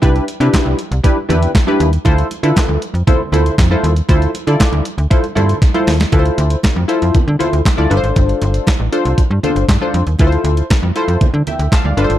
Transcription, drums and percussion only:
0.02 kick loud
0.02 closed hi-hat medium
0.02 muted conga medium
0.16 closed hi-hat soft
0.28 closed hi-hat medium
0.41 closed hi-hat medium
0.53 kick loud
0.53 snare loud
0.53 clap loud
0.53 closed hi-hat loud
0.53 high conga medium
0.79 closed hi-hat medium
0.92 closed hi-hat medium
1.04 kick loud
1.04 closed hi-hat medium
1.04 muted conga medium
1.30 closed hi-hat medium
1.30 low conga medium
1.43 closed hi-hat medium
1.55 kick loud
1.55 snare loud
1.55 clap medium
1.55 closed hi-hat medium
1.55 high conga medium
1.67 high conga medium
1.80 closed hi-hat medium
1.93 closed hi-hat medium
2.05 kick loud
2.05 closed hi-hat medium
2.05 muted conga medium
2.18 closed hi-hat soft
2.31 closed hi-hat medium
2.31 muted conga soft
2.44 closed hi-hat medium
2.56 kick loud
2.56 snare loud
2.56 clap loud
2.56 closed hi-hat loud
2.56 high conga medium
2.82 closed hi-hat medium
2.95 closed hi-hat soft
3.07 kick loud
3.07 closed hi-hat medium
3.07 muted conga medium
3.07 low conga medium
3.33 closed hi-hat medium
3.33 low conga medium
3.46 closed hi-hat medium
3.58 kick loud
3.58 snare loud
3.58 clap medium
3.58 closed hi-hat medium
3.58 high conga medium
3.70 high conga medium
3.84 closed hi-hat medium
3.96 closed hi-hat soft
4.09 kick loud
4.09 closed hi-hat medium
4.09 muted conga medium
4.22 closed hi-hat soft
4.35 closed hi-hat medium
4.35 muted conga soft
4.47 closed hi-hat medium
4.60 kick loud
4.60 snare loud
4.60 clap loud
4.60 closed hi-hat medium
4.60 high conga medium
4.73 closed hi-hat soft
4.85 closed hi-hat medium
4.98 closed hi-hat soft
5.11 kick loud
5.11 closed hi-hat medium
5.11 muted conga medium
5.24 closed hi-hat soft
5.37 closed hi-hat medium
5.37 low conga medium
5.49 closed hi-hat medium
5.62 kick loud
5.62 snare medium
5.62 closed hi-hat medium
5.62 high conga medium
5.74 closed hi-hat soft
5.74 high conga medium
5.87 snare loud
5.87 open hi-hat medium
6.00 snare loud
6.00 closed hi-hat soft
6.12 kick loud
6.12 closed hi-hat medium
6.12 muted conga medium
6.25 closed hi-hat soft
6.38 closed hi-hat medium
6.38 muted conga soft
6.50 closed hi-hat medium
6.63 kick loud
6.63 snare loud
6.63 clap medium
6.63 closed hi-hat medium
6.63 high conga medium
6.89 closed hi-hat medium
7.02 closed hi-hat soft
7.14 kick loud
7.14 closed hi-hat medium
7.14 muted conga medium
7.14 low conga medium
7.40 closed hi-hat medium
7.40 low conga medium
7.53 closed hi-hat medium
7.65 kick loud
7.65 snare loud
7.65 clap medium
7.65 closed hi-hat medium
7.65 high conga medium
7.78 high conga medium
7.91 closed hi-hat medium
8.04 closed hi-hat soft
8.16 kick loud
8.16 closed hi-hat medium
8.16 muted conga medium
8.29 closed hi-hat soft
8.41 closed hi-hat medium
8.41 muted conga soft
8.54 closed hi-hat medium
8.67 kick loud
8.67 snare loud
8.67 clap medium
8.67 closed hi-hat medium
8.67 high conga medium
8.93 closed hi-hat medium
9.05 closed hi-hat medium
9.18 kick loud
9.18 closed hi-hat medium
9.18 muted conga medium
9.43 closed hi-hat medium
9.43 low conga medium
9.56 closed hi-hat medium
9.69 kick loud
9.69 snare loud
9.69 clap medium
9.69 closed hi-hat medium
9.69 high conga medium
9.81 high conga medium
9.94 closed hi-hat medium
10.07 closed hi-hat soft
10.18 kick medium
10.18 closed hi-hat medium
10.18 muted conga medium
10.32 closed hi-hat soft
10.45 closed hi-hat medium
10.57 closed hi-hat medium
10.70 kick loud
10.70 snare loud
10.70 clap medium
10.70 closed hi-hat medium
10.70 high conga medium
10.96 closed hi-hat medium
11.08 closed hi-hat soft
11.21 kick loud
11.21 closed hi-hat medium
11.21 muted conga medium
11.21 low conga medium
11.47 closed hi-hat medium
11.47 low conga medium
11.59 closed hi-hat medium
11.72 kick loud
11.72 snare loud
11.72 clap medium
11.72 closed hi-hat medium
11.72 high conga medium
11.84 high conga medium
11.97 closed hi-hat medium
12.10 closed hi-hat soft

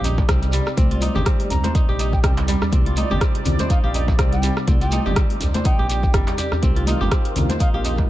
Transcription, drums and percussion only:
0.04 open hi-hat medium
0.04 djembe tone medium
0.04 shekere medium
0.18 kick medium
0.18 djembe slap medium
0.18 high conga medium
0.18 shekere soft
0.29 kick loud
0.29 cross-stick loud
0.29 closed hi-hat medium
0.29 shekere medium
0.43 closed hi-hat soft
0.43 shekere soft
0.52 open hi-hat medium
0.52 shekere loud
0.66 cross-stick medium
0.66 shekere soft
0.77 kick loud
0.77 closed hi-hat medium
0.77 high conga loud
0.77 shekere medium
0.91 closed hi-hat soft
1.01 open hi-hat medium
1.01 high conga medium
1.01 shekere loud
1.15 djembe tone medium
1.15 high conga medium
1.15 low conga medium
1.15 shekere soft
1.26 kick loud
1.26 cross-stick loud
1.26 closed hi-hat medium
1.26 shekere medium
1.40 open hi-hat medium
1.40 high conga medium
1.50 open hi-hat medium
1.50 djembe bass medium
1.50 shekere medium
1.64 closed hi-hat soft
1.64 djembe slap medium
1.64 djembe tone loud
1.64 high conga loud
1.64 shekere soft
1.75 kick loud
1.75 closed hi-hat medium
1.75 shekere medium
1.99 open hi-hat medium
1.99 shekere medium
2.13 kick medium
2.13 shekere soft
2.24 kick loud
2.24 cross-stick loud
2.24 closed hi-hat medium
2.24 djembe tone loud
2.24 shekere medium
2.37 closed hi-hat soft
2.37 djembe slap loud
2.37 shekere soft
2.48 open hi-hat loud
2.48 djembe tone medium
2.48 shekere loud
2.61 cross-stick medium
2.61 djembe bass medium
2.61 shekere soft
2.72 kick loud
2.72 closed hi-hat medium
2.72 high conga loud
2.72 shekere medium
2.86 closed hi-hat soft
2.96 open hi-hat medium
2.96 high conga medium
2.96 shekere loud
3.10 high conga medium
3.10 djembe tone medium
3.10 shekere soft
3.21 kick loud
3.21 cross-stick loud
3.21 closed hi-hat medium
3.21 shekere medium
3.35 closed hi-hat soft
3.45 open hi-hat medium
3.45 djembe bass medium
3.45 low conga medium
3.45 shekere medium
3.59 closed hi-hat soft
3.59 djembe slap medium
3.59 high conga loud
3.59 djembe tone medium
3.59 shekere soft
3.70 kick loud
3.70 closed hi-hat medium
3.70 shekere medium
3.94 open hi-hat medium
3.94 djembe tone medium
3.94 shekere medium
4.08 kick medium
4.08 djembe slap medium
4.08 high conga medium
4.08 shekere soft
4.19 kick loud
4.19 cross-stick loud
4.19 closed hi-hat medium
4.19 shekere soft
4.32 closed hi-hat soft
4.32 shekere soft
4.43 open hi-hat medium
4.43 shekere loud
4.57 cross-stick medium
4.57 shekere soft
4.68 kick loud
4.68 closed hi-hat medium
4.68 high conga loud
4.68 shekere soft
4.81 closed hi-hat soft
4.81 shekere soft
4.91 open hi-hat medium
4.91 high conga loud
4.91 shekere medium
5.06 high conga medium
5.06 djembe tone medium
5.06 low conga medium
5.06 shekere soft
5.16 kick loud
5.16 cross-stick loud
5.16 closed hi-hat medium
5.16 shekere medium
5.30 open hi-hat soft
5.30 high conga medium
5.40 open hi-hat medium
5.40 djembe bass medium
5.40 shekere loud
5.54 closed hi-hat soft
5.54 djembe slap medium
5.54 djembe tone medium
5.54 high conga loud
5.54 shekere soft
5.65 kick loud
5.65 closed hi-hat medium
5.65 shekere soft
5.89 open hi-hat medium
5.89 shekere medium
6.03 kick medium
6.03 shekere soft
6.13 kick loud
6.13 cross-stick loud
6.13 closed hi-hat medium
6.13 djembe tone medium
6.13 shekere medium
6.27 closed hi-hat soft
6.27 djembe slap loud
6.27 shekere soft
6.38 open hi-hat medium
6.38 djembe tone medium
6.38 shekere loud
6.52 cross-stick medium
6.52 djembe bass medium
6.52 shekere soft
6.62 kick loud
6.62 closed hi-hat medium
6.62 high conga loud
6.62 shekere soft
6.76 closed hi-hat soft
6.87 open hi-hat medium
6.87 high conga loud
6.87 shekere medium
7.01 high conga medium
7.01 djembe tone medium
7.01 shekere soft
7.11 kick loud
7.11 cross-stick loud
7.11 closed hi-hat medium
7.11 shekere medium
7.25 closed hi-hat soft
7.36 open hi-hat medium
7.36 low conga medium
7.36 djembe bass medium
7.36 shekere medium
7.49 closed hi-hat soft
7.49 djembe slap medium
7.49 djembe tone medium
7.49 high conga medium
7.49 shekere soft
7.60 kick loud
7.60 closed hi-hat medium
7.60 shekere medium
7.85 open hi-hat medium
7.85 djembe tone medium
7.85 shekere medium
7.97 kick medium
7.97 djembe slap medium
7.97 high conga medium
7.97 shekere soft

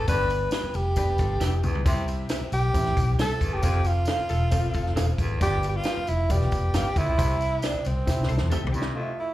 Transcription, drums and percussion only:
0.08 kick loud
0.08 ride medium
0.08 tambourine medium
0.30 ride medium
0.30 tambourine medium
0.51 snare loud
0.51 ride medium
0.51 tambourine medium
0.74 ride medium
0.74 tambourine medium
0.96 kick medium
0.96 ride medium
0.96 tambourine medium
1.18 kick medium
1.18 ride medium
1.18 tambourine medium
1.41 snare medium
1.41 tambourine medium
1.63 mid tom medium
1.63 tambourine medium
1.75 floor tom medium
1.86 kick loud
1.86 ride medium
1.86 tambourine medium
2.08 ride medium
2.08 tambourine medium
2.29 snare loud
2.29 ride medium
2.29 tambourine medium
2.52 ride medium
2.52 tambourine medium
2.74 kick medium
2.74 ride medium
2.74 tambourine medium
2.85 snare soft
2.97 kick loud
2.97 ride medium
2.97 tambourine medium
3.19 snare loud
3.19 ride medium
3.19 tambourine medium
3.41 kick medium
3.41 ride medium
3.41 tambourine medium
3.63 kick loud
3.63 ride medium
3.63 tambourine loud
3.85 ride medium
3.85 tambourine medium
4.05 snare loud
4.05 ride medium
4.05 tambourine medium
4.29 ride medium
4.29 tambourine medium
4.51 kick loud
4.51 ride medium
4.51 tambourine medium
4.74 kick medium
4.74 ride medium
4.74 tambourine medium
4.86 snare soft
4.97 snare loud
4.97 ride medium
4.97 tambourine medium
5.18 kick medium
5.18 ride medium
5.18 tambourine medium
5.41 kick loud
5.41 ride medium
5.41 tambourine medium
5.63 ride medium
5.63 tambourine medium
5.84 snare loud
5.84 ride medium
5.84 tambourine medium
6.07 ride medium
6.07 tambourine medium
6.30 kick medium
6.30 ride medium
6.30 tambourine medium
6.41 snare soft
6.52 kick loud
6.52 ride soft
6.52 tambourine medium
6.74 snare loud
6.74 ride medium
6.74 tambourine medium
6.96 kick medium
6.96 ride medium
6.96 tambourine medium
7.19 kick loud
7.19 ride medium
7.19 tambourine loud
7.41 ride medium
7.41 tambourine medium
7.62 snare medium
7.62 ride medium
7.62 tambourine medium
7.85 ride medium
7.85 tambourine medium
8.07 kick medium
8.07 snare medium
8.07 tambourine medium
8.23 snare medium
8.29 tambourine medium
8.38 snare medium
8.51 mid tom medium
8.51 tambourine medium
8.67 floor tom loud
8.74 tambourine medium
8.82 snare medium

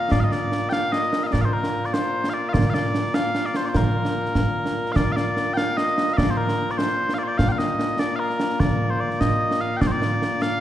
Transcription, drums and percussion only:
0.12 concert bass drum medium
0.12 snare loud
0.32 snare medium
0.52 snare medium
0.72 snare medium
0.93 snare medium
1.03 snare soft
1.13 snare medium
1.23 snare soft
1.33 concert bass drum medium
1.33 snare medium
1.64 snare medium
1.84 snare soft
1.94 snare loud
2.24 snare medium
2.54 concert bass drum medium
2.54 snare loud
2.74 snare medium
2.85 snare soft
2.94 snare medium
3.05 snare soft
3.14 snare loud
3.35 snare medium
3.45 snare soft
3.54 snare medium
3.65 snare soft
3.75 concert bass drum medium
3.75 snare loud
4.05 snare medium
4.25 snare soft
4.35 concert bass drum medium
4.35 snare medium
4.66 snare medium
4.86 snare soft
4.96 concert bass drum medium
4.96 snare loud
5.17 snare medium
5.37 snare medium
5.57 snare medium
5.78 snare medium
5.88 snare soft
5.98 snare medium
6.08 snare soft
6.18 concert bass drum medium
6.18 snare loud
6.49 snare medium
6.69 snare soft
6.79 snare medium
7.09 snare medium
7.39 concert bass drum medium
7.39 snare loud
7.59 snare medium
7.79 snare medium
7.99 snare loud
8.30 snare soft
8.40 snare medium
8.50 snare soft
8.60 concert bass drum medium
8.60 snare loud
9.11 snare soft
9.21 concert bass drum medium
9.21 snare loud
9.51 snare medium
9.82 concert bass drum medium
9.82 snare loud
10.02 snare medium
10.22 snare medium
10.42 snare medium

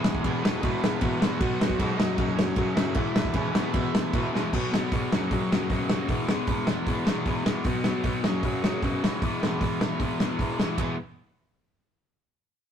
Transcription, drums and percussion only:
0.04 snare loud
0.15 kick medium
0.24 kick loud
0.24 ride medium
0.45 snare loud
0.63 kick loud
0.63 ride medium
0.84 snare loud
1.01 kick loud
1.01 ride medium
1.22 snare loud
1.41 kick loud
1.41 ride medium
1.61 snare loud
1.70 kick medium
1.79 kick loud
1.79 ride medium
2.00 snare loud
2.18 kick loud
2.18 ride medium
2.39 snare loud
2.56 kick loud
2.56 ride medium
2.77 snare loud
2.95 kick loud
2.95 ride medium
3.16 snare loud
3.25 kick medium
3.34 kick loud
3.34 ride medium
3.55 snare loud
3.74 kick loud
3.74 ride medium
3.95 snare loud
4.13 kick loud
4.13 ride medium
4.35 snare medium
4.53 kick loud
4.53 crash loud
4.74 snare loud
4.92 kick loud
4.92 open hi-hat medium
5.12 snare loud
5.31 kick loud
5.31 open hi-hat soft
5.52 snare loud
5.70 kick loud
5.70 open hi-hat medium
5.90 snare loud
6.08 kick loud
6.08 open hi-hat medium
6.29 snare loud
6.47 kick loud
6.47 open hi-hat medium
6.67 snare loud
6.87 kick loud
6.87 open hi-hat medium
7.07 snare loud
7.25 kick loud
7.25 open hi-hat medium
7.46 snare loud
7.64 kick loud
7.64 open hi-hat medium
7.84 snare loud
8.03 kick loud
8.03 open hi-hat medium
8.24 snare loud
8.43 kick medium
8.43 open hi-hat medium
8.64 snare loud
8.82 kick loud
8.82 open hi-hat soft
9.04 snare loud
9.22 kick loud
9.22 open hi-hat medium
9.43 snare loud
9.61 kick loud
9.61 open hi-hat medium
9.81 snare loud
10.00 kick loud
10.00 open hi-hat soft
10.20 snare loud
10.39 kick loud
10.39 open hi-hat medium
10.60 snare loud
10.78 kick loud
10.78 ride bell medium

